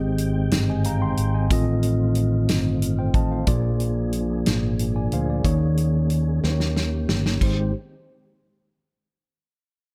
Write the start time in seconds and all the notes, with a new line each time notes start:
Already playing: G#1 G#2 D#3 G#3 C4 G4 G#4 D#5 G5
0.18 closed hi-hat
0.51 G1, snare, closed hi-hat
0.70 D#5 G#5
0.84 F5 A#5, closed hi-hat
1.02 G5 C6
1.17 G#1, closed hi-hat
1.34 D#5 G#5
1.50 A1 A2 D#3 A3 C4 F4 A4 D#5, kick, closed hi-hat
1.83 closed hi-hat
2.15 closed hi-hat
2.48 G1, snare, closed hi-hat
2.82 closed hi-hat
2.99 C5 G5
3.14 A1 D#5 A5, kick, closed hi-hat
3.31 C5 F5
3.47 A#1 A#2 F3 A#3 D4 F4 G#4 D5, kick, closed hi-hat
3.80 closed hi-hat
4.13 closed hi-hat
4.46 G#1, snare, closed hi-hat
4.79 closed hi-hat
4.96 D5 G#5
5.12 D2 C5 F5, closed hi-hat
5.30 G#4 D5
5.44 D#2 D#3 A#3 C#4 D#4 G#4 C#5, kick, closed hi-hat
5.77 closed hi-hat
6.10 closed hi-hat
6.43 D#2 D#3 A#3 D#4 G4 C5, snare
6.51 C#5
6.60 snare
6.76 snare
7.09 G1, snare
7.26 snare
7.41 G#1 D#3 G#3 C4 D#4 G4 C5, kick, crash